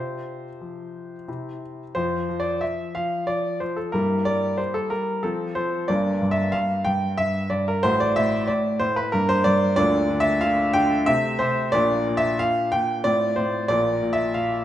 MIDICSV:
0, 0, Header, 1, 2, 480
1, 0, Start_track
1, 0, Tempo, 677201
1, 1386, Time_signature, 3, 2, 24, 8
1, 1386, Tempo, 659341
1, 2826, Tempo, 651466
1, 10718, End_track
2, 0, Start_track
2, 0, Title_t, "Grand piano"
2, 0, Program_c, 0, 0
2, 0, Note_on_c, 0, 48, 51
2, 0, Note_on_c, 0, 65, 36
2, 0, Note_on_c, 0, 72, 71
2, 113, Control_c, 0, 64, 127
2, 334, Note_off_c, 0, 48, 0
2, 433, Note_on_c, 0, 53, 44
2, 814, Note_off_c, 0, 53, 0
2, 879, Note_off_c, 0, 65, 0
2, 909, Note_on_c, 0, 48, 43
2, 911, Note_on_c, 0, 64, 30
2, 914, Control_c, 0, 64, 0
2, 1045, Control_c, 0, 64, 127
2, 1145, Note_off_c, 0, 72, 0
2, 1291, Note_off_c, 0, 48, 0
2, 1359, Note_off_c, 0, 64, 0
2, 1381, Note_on_c, 0, 72, 89
2, 1385, Note_on_c, 0, 65, 47
2, 1387, Note_on_c, 0, 53, 61
2, 1389, Note_on_c, 0, 41, 56
2, 1390, Control_c, 0, 64, 0
2, 1519, Control_c, 0, 64, 127
2, 1619, Note_off_c, 0, 53, 0
2, 1623, Note_off_c, 0, 41, 0
2, 1630, Note_on_c, 0, 53, 55
2, 1707, Note_off_c, 0, 72, 0
2, 1707, Note_on_c, 0, 74, 88
2, 1858, Note_off_c, 0, 53, 0
2, 1862, Note_on_c, 0, 76, 79
2, 1869, Note_off_c, 0, 74, 0
2, 1869, Note_on_c, 0, 53, 53
2, 1880, Control_c, 0, 64, 0
2, 2102, Note_off_c, 0, 53, 0
2, 2106, Note_off_c, 0, 76, 0
2, 2108, Note_on_c, 0, 77, 90
2, 2114, Note_on_c, 0, 53, 56
2, 2339, Note_off_c, 0, 53, 0
2, 2342, Note_on_c, 0, 74, 87
2, 2347, Note_off_c, 0, 77, 0
2, 2349, Note_on_c, 0, 53, 49
2, 2580, Note_off_c, 0, 53, 0
2, 2584, Note_off_c, 0, 74, 0
2, 2585, Note_on_c, 0, 72, 71
2, 2592, Note_on_c, 0, 53, 55
2, 2703, Note_on_c, 0, 69, 66
2, 2706, Note_off_c, 0, 72, 0
2, 2799, Note_off_c, 0, 65, 0
2, 2818, Note_on_c, 0, 70, 82
2, 2822, Note_off_c, 0, 53, 0
2, 2825, Note_off_c, 0, 69, 0
2, 2827, Note_on_c, 0, 43, 59
2, 2829, Note_on_c, 0, 58, 42
2, 2830, Note_on_c, 0, 55, 63
2, 2830, Note_on_c, 0, 64, 45
2, 2992, Control_c, 0, 64, 127
2, 3059, Note_off_c, 0, 55, 0
2, 3061, Note_on_c, 0, 74, 94
2, 3062, Note_off_c, 0, 43, 0
2, 3064, Note_off_c, 0, 70, 0
2, 3070, Note_on_c, 0, 55, 54
2, 3298, Note_off_c, 0, 55, 0
2, 3299, Note_on_c, 0, 72, 75
2, 3306, Note_off_c, 0, 74, 0
2, 3309, Note_on_c, 0, 55, 51
2, 3318, Control_c, 0, 64, 0
2, 3421, Note_on_c, 0, 69, 81
2, 3424, Note_off_c, 0, 72, 0
2, 3536, Note_off_c, 0, 55, 0
2, 3539, Note_on_c, 0, 70, 84
2, 3544, Note_off_c, 0, 69, 0
2, 3547, Note_on_c, 0, 55, 54
2, 3758, Note_off_c, 0, 58, 0
2, 3759, Note_off_c, 0, 64, 0
2, 3779, Note_off_c, 0, 55, 0
2, 3780, Note_on_c, 0, 69, 76
2, 3782, Note_off_c, 0, 70, 0
2, 3786, Note_on_c, 0, 53, 62
2, 3786, Note_on_c, 0, 65, 45
2, 3791, Note_on_c, 0, 60, 44
2, 3944, Control_c, 0, 64, 127
2, 4015, Note_off_c, 0, 53, 0
2, 4018, Note_on_c, 0, 72, 92
2, 4023, Note_off_c, 0, 69, 0
2, 4026, Note_on_c, 0, 53, 63
2, 4237, Note_off_c, 0, 65, 0
2, 4239, Note_off_c, 0, 60, 0
2, 4259, Note_off_c, 0, 53, 0
2, 4260, Note_on_c, 0, 74, 94
2, 4262, Note_off_c, 0, 72, 0
2, 4265, Note_on_c, 0, 58, 51
2, 4268, Note_on_c, 0, 31, 66
2, 4269, Note_on_c, 0, 43, 68
2, 4270, Note_on_c, 0, 62, 52
2, 4276, Control_c, 0, 64, 0
2, 4426, Control_c, 0, 64, 127
2, 4496, Note_off_c, 0, 43, 0
2, 4499, Note_off_c, 0, 31, 0
2, 4507, Note_on_c, 0, 43, 61
2, 4579, Note_on_c, 0, 76, 90
2, 4582, Note_off_c, 0, 74, 0
2, 4728, Note_off_c, 0, 43, 0
2, 4732, Note_on_c, 0, 77, 99
2, 4739, Note_on_c, 0, 43, 63
2, 4742, Note_off_c, 0, 76, 0
2, 4750, Control_c, 0, 64, 0
2, 4969, Note_off_c, 0, 43, 0
2, 4972, Note_on_c, 0, 79, 98
2, 4977, Note_off_c, 0, 77, 0
2, 4981, Note_on_c, 0, 43, 64
2, 5213, Note_off_c, 0, 43, 0
2, 5215, Note_on_c, 0, 76, 103
2, 5217, Note_off_c, 0, 79, 0
2, 5224, Note_on_c, 0, 43, 58
2, 5449, Note_off_c, 0, 43, 0
2, 5452, Note_on_c, 0, 74, 85
2, 5458, Note_off_c, 0, 76, 0
2, 5460, Note_on_c, 0, 43, 63
2, 5577, Note_off_c, 0, 74, 0
2, 5586, Note_on_c, 0, 70, 86
2, 5672, Note_off_c, 0, 58, 0
2, 5674, Note_off_c, 0, 62, 0
2, 5694, Note_off_c, 0, 43, 0
2, 5696, Note_on_c, 0, 72, 110
2, 5702, Note_on_c, 0, 57, 54
2, 5704, Note_off_c, 0, 70, 0
2, 5704, Note_on_c, 0, 33, 69
2, 5705, Note_on_c, 0, 45, 76
2, 5706, Note_on_c, 0, 66, 55
2, 5819, Note_off_c, 0, 72, 0
2, 5823, Note_on_c, 0, 74, 95
2, 5833, Control_c, 0, 64, 127
2, 5935, Note_off_c, 0, 33, 0
2, 5935, Note_off_c, 0, 45, 0
2, 5940, Note_on_c, 0, 76, 106
2, 5942, Note_off_c, 0, 74, 0
2, 5946, Note_on_c, 0, 45, 67
2, 6172, Note_on_c, 0, 74, 86
2, 6175, Note_off_c, 0, 45, 0
2, 6180, Note_off_c, 0, 76, 0
2, 6186, Note_on_c, 0, 45, 65
2, 6187, Control_c, 0, 64, 0
2, 6407, Note_off_c, 0, 45, 0
2, 6408, Note_on_c, 0, 72, 103
2, 6416, Note_off_c, 0, 74, 0
2, 6418, Note_on_c, 0, 45, 67
2, 6532, Note_on_c, 0, 71, 92
2, 6534, Note_off_c, 0, 72, 0
2, 6631, Note_off_c, 0, 57, 0
2, 6633, Note_off_c, 0, 66, 0
2, 6649, Note_on_c, 0, 70, 100
2, 6652, Note_off_c, 0, 45, 0
2, 6656, Note_off_c, 0, 71, 0
2, 6656, Note_on_c, 0, 58, 51
2, 6659, Note_on_c, 0, 43, 70
2, 6659, Note_on_c, 0, 62, 51
2, 6772, Note_on_c, 0, 72, 107
2, 6774, Note_off_c, 0, 70, 0
2, 6806, Control_c, 0, 64, 127
2, 6882, Note_off_c, 0, 43, 0
2, 6885, Note_on_c, 0, 74, 110
2, 6893, Note_on_c, 0, 43, 68
2, 6895, Note_off_c, 0, 72, 0
2, 7104, Note_off_c, 0, 58, 0
2, 7105, Note_off_c, 0, 62, 0
2, 7110, Note_off_c, 0, 74, 0
2, 7121, Note_on_c, 0, 74, 116
2, 7125, Note_off_c, 0, 43, 0
2, 7129, Note_on_c, 0, 38, 73
2, 7129, Note_on_c, 0, 50, 80
2, 7129, Note_on_c, 0, 58, 56
2, 7129, Note_on_c, 0, 65, 57
2, 7145, Control_c, 0, 64, 0
2, 7254, Control_c, 0, 64, 127
2, 7361, Note_off_c, 0, 38, 0
2, 7361, Note_off_c, 0, 50, 0
2, 7373, Note_on_c, 0, 50, 71
2, 7444, Note_off_c, 0, 74, 0
2, 7445, Note_on_c, 0, 76, 109
2, 7593, Note_off_c, 0, 50, 0
2, 7596, Note_on_c, 0, 77, 110
2, 7604, Note_on_c, 0, 50, 69
2, 7607, Note_off_c, 0, 76, 0
2, 7834, Note_off_c, 0, 50, 0
2, 7837, Note_on_c, 0, 79, 118
2, 7843, Note_off_c, 0, 77, 0
2, 7845, Note_on_c, 0, 50, 73
2, 8057, Note_off_c, 0, 58, 0
2, 8057, Note_off_c, 0, 65, 0
2, 8079, Note_on_c, 0, 76, 109
2, 8080, Note_off_c, 0, 50, 0
2, 8083, Note_off_c, 0, 79, 0
2, 8086, Note_on_c, 0, 60, 54
2, 8090, Note_on_c, 0, 48, 70
2, 8090, Note_on_c, 0, 57, 50
2, 8099, Control_c, 0, 64, 0
2, 8234, Control_c, 0, 64, 127
2, 8317, Note_off_c, 0, 48, 0
2, 8318, Note_on_c, 0, 72, 98
2, 8324, Note_off_c, 0, 76, 0
2, 8328, Note_on_c, 0, 48, 74
2, 8540, Note_off_c, 0, 60, 0
2, 8541, Note_off_c, 0, 57, 0
2, 8562, Note_off_c, 0, 48, 0
2, 8563, Note_on_c, 0, 74, 113
2, 8565, Note_off_c, 0, 72, 0
2, 8570, Note_on_c, 0, 58, 54
2, 8574, Note_on_c, 0, 34, 74
2, 8574, Note_on_c, 0, 46, 83
2, 8574, Note_on_c, 0, 62, 60
2, 8577, Control_c, 0, 64, 0
2, 8691, Control_c, 0, 64, 127
2, 8808, Note_off_c, 0, 34, 0
2, 8808, Note_off_c, 0, 46, 0
2, 8823, Note_on_c, 0, 46, 69
2, 8890, Note_off_c, 0, 74, 0
2, 8897, Note_on_c, 0, 76, 103
2, 9053, Note_off_c, 0, 46, 0
2, 9056, Note_off_c, 0, 76, 0
2, 9059, Note_on_c, 0, 77, 110
2, 9064, Control_c, 0, 64, 0
2, 9066, Note_on_c, 0, 46, 66
2, 9293, Note_off_c, 0, 46, 0
2, 9297, Note_off_c, 0, 77, 0
2, 9298, Note_on_c, 0, 79, 106
2, 9307, Note_on_c, 0, 46, 69
2, 9505, Note_off_c, 0, 58, 0
2, 9506, Note_off_c, 0, 62, 0
2, 9533, Note_off_c, 0, 46, 0
2, 9536, Note_off_c, 0, 79, 0
2, 9536, Note_on_c, 0, 74, 108
2, 9541, Note_on_c, 0, 60, 50
2, 9542, Note_on_c, 0, 45, 70
2, 9543, Note_on_c, 0, 65, 52
2, 9690, Control_c, 0, 64, 127
2, 9769, Note_off_c, 0, 45, 0
2, 9771, Note_on_c, 0, 72, 84
2, 9774, Note_off_c, 0, 74, 0
2, 9780, Note_on_c, 0, 45, 64
2, 9986, Note_off_c, 0, 60, 0
2, 9987, Note_off_c, 0, 65, 0
2, 10009, Note_off_c, 0, 45, 0
2, 10010, Note_on_c, 0, 74, 109
2, 10011, Note_off_c, 0, 72, 0
2, 10017, Note_on_c, 0, 46, 72
2, 10018, Note_on_c, 0, 58, 55
2, 10020, Note_on_c, 0, 65, 51
2, 10021, Control_c, 0, 64, 0
2, 10021, Note_on_c, 0, 34, 70
2, 10177, Control_c, 0, 64, 127
2, 10249, Note_off_c, 0, 46, 0
2, 10252, Note_off_c, 0, 34, 0
2, 10263, Note_on_c, 0, 46, 62
2, 10335, Note_off_c, 0, 74, 0
2, 10337, Note_on_c, 0, 76, 99
2, 10492, Note_off_c, 0, 46, 0
2, 10496, Note_on_c, 0, 77, 93
2, 10501, Note_off_c, 0, 76, 0
2, 10503, Note_on_c, 0, 46, 54
2, 10718, Note_off_c, 0, 46, 0
2, 10718, Note_off_c, 0, 58, 0
2, 10718, Note_off_c, 0, 65, 0
2, 10718, Note_off_c, 0, 77, 0
2, 10718, End_track
0, 0, End_of_file